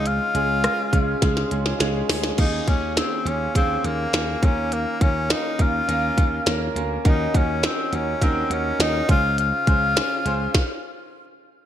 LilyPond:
<<
  \new Staff \with { instrumentName = "Grand piano" } { \time 4/4 \key des \major \tempo 4 = 103 <aes des' f' aes'>8 <aes des' f' aes'>8 <aes des' f' aes'>8 <aes des' f' aes'>8 <aes des' f' aes'>8 <aes des' f' aes'>8 <aes des' f' aes'>8 <aes des' f' aes'>8 | <bes des' f' aes'>8 <bes des' f' aes'>8 <bes des' f' aes'>8 <bes des' f' aes'>8 <bes des' f' aes'>8 <bes des' f' aes'>8 <bes des' f' aes'>8 <bes des' f' bes'>8~ | <bes des' f' bes'>8 <bes des' f' bes'>8 <bes des' f' bes'>8 <bes des' f' bes'>8 <bes des' f' bes'>8 <bes des' f' bes'>8 <bes des' f' bes'>8 <bes des' f' bes'>8 | <des' ees' ges' bes'>8 <des' ees' ges' bes'>8 <des' ees' ges' bes'>8 <des' ees' ges' bes'>8 <des' ees' ges' bes'>8 <des' ees' ges' bes'>8 <des' ees' ges' bes'>8 <des' f' aes' c''>8~ |
<des' f' aes' c''>8 <des' f' aes' c''>8 <des' f' aes' c''>8 <des' f' aes' c''>8 r2 | }
  \new Staff \with { instrumentName = "Grand piano" } { \clef bass \time 4/4 \key des \major des4 r2. | ees4. r2 ees8~ | ees4 r2. | ees4. r2 des8~ |
des4 r2. | }
  \new Staff \with { instrumentName = "Tenor saxophone" } { \time 4/4 \key des \major f'2. r4 | ees'8 des'8 c'8 des'8 c'8 bes4 des'8 | bes8 des'8 ees'8 f'2 r8 | ees'8 des'8 c'8 des'8 c'8 des'8 ees'8 f'8 |
f'2. r4 | }
  \new Staff \with { instrumentName = "Slap bass" } { \clef bass \time 4/4 \key des \major des,8 des,8. r16 des,8 des,8 des,8 des,8 d,8 | ees,8 ees,8. r16 ees,8 ees,8 ees,8 ees,8 ees,8~ | ees,8 ees,8. r16 ees,8 ees,8 ees,8 ees,8 d,8 | ees,8 ees,8. r16 ees,8 ees,8 ees,8 ees,8 des,8~ |
des,8 des,8. r16 des,8 r2 | }
  \new DrumStaff \with { instrumentName = "Drums" } \drummode { \time 4/4 hh8 hh8 <hh ss>8 <hh bd>8 <hh bd sn>16 sn16 hh16 sn16 <hh sn>8 <hho sn>16 sn16 | <cymc hh bd>8 <hh bd>8 <hh sn>8 hh8 <hh bd>8 hh8 <hh sn>8 <hh bd>8 | hh8 <hh bd>8 <hh sn>8 <hh bd>8 hh8 <hh bd>8 <hh sn>8 hh8 | <hh bd>8 <hh bd>8 <hh sn>8 hh8 <hh bd>8 hh8 <hh sn>8 <hh bd>8 |
hh8 <hh bd>8 <hh sn>8 hh8 <bd sn>4 r4 | }
>>